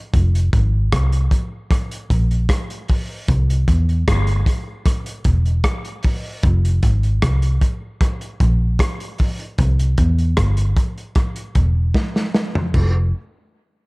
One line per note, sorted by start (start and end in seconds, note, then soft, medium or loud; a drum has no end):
0.14 0.49 F1 medium
0.14 kick loud
0.14 closed hi-hat medium
0.35 closed hi-hat soft
0.53 0.88 G#1 medium
0.53 kick loud
0.53 closed hi-hat medium
0.92 1.28 C2 loud
0.92 kick loud
0.92 cross-stick loud
0.92 closed hi-hat medium
1.12 closed hi-hat medium
1.31 kick medium
1.31 closed hi-hat medium
1.71 kick loud
1.71 cross-stick medium
1.71 closed hi-hat medium
1.91 closed hi-hat medium
2.10 2.46 A#1 medium
2.10 kick loud
2.10 closed hi-hat medium
2.31 closed hi-hat soft
2.49 kick loud
2.49 cross-stick loud
2.49 closed hi-hat medium
2.70 closed hi-hat soft
2.88 kick medium
2.88 open hi-hat medium
3.28 3.64 C2 loud
3.28 kick loud
3.28 closed hi-hat medium
3.50 closed hi-hat medium
3.68 4.03 E2 medium
3.68 kick medium
3.68 closed hi-hat medium
3.89 closed hi-hat soft
4.08 4.43 G1 medium
4.08 kick loud
4.08 cross-stick loud
4.08 closed hi-hat medium
4.27 closed hi-hat medium
4.46 kick medium
4.46 closed hi-hat medium
4.86 kick loud
4.86 cross-stick medium
4.86 closed hi-hat medium
5.06 closed hi-hat medium
5.24 5.61 E1 medium
5.24 kick loud
5.24 closed hi-hat medium
5.45 closed hi-hat soft
5.64 kick loud
5.64 cross-stick loud
5.64 closed hi-hat medium
5.85 closed hi-hat medium
6.03 kick medium
6.03 open hi-hat medium
6.43 6.79 F1 loud
6.43 kick loud
6.43 closed hi-hat medium
6.65 closed hi-hat medium
6.83 7.18 G#1 medium
6.83 kick loud
6.83 closed hi-hat medium
7.03 closed hi-hat soft
7.22 7.58 C2 loud
7.22 kick loud
7.22 cross-stick loud
7.22 closed hi-hat medium
7.42 closed hi-hat medium
7.61 kick medium
7.61 closed hi-hat medium
8.01 kick loud
8.01 cross-stick medium
8.01 closed hi-hat medium
8.21 closed hi-hat soft
8.40 8.76 A#1 medium
8.40 kick loud
8.40 closed hi-hat medium
8.79 kick loud
8.79 cross-stick loud
8.79 closed hi-hat medium
9.00 closed hi-hat soft
9.18 kick medium
9.18 open hi-hat medium
9.39 closed hi-hat soft
9.58 9.94 C2 loud
9.58 kick loud
9.58 closed hi-hat medium
9.79 closed hi-hat medium
9.98 10.34 E2 medium
9.98 kick loud
9.98 closed hi-hat medium
10.18 closed hi-hat soft
10.37 10.73 G1 loud
10.37 kick loud
10.37 cross-stick loud
10.37 closed hi-hat medium
10.57 closed hi-hat medium
10.77 kick loud
10.77 closed hi-hat medium
10.98 closed hi-hat soft
11.15 kick loud
11.15 cross-stick medium
11.15 closed hi-hat medium
11.36 closed hi-hat medium
11.55 11.91 E1 medium
11.55 kick loud
11.55 closed hi-hat medium
11.94 kick loud
11.94 snare medium
12.16 snare medium
12.34 snare medium
12.55 floor tom medium
12.74 13.11 F1 loud
12.74 kick loud
12.74 crash medium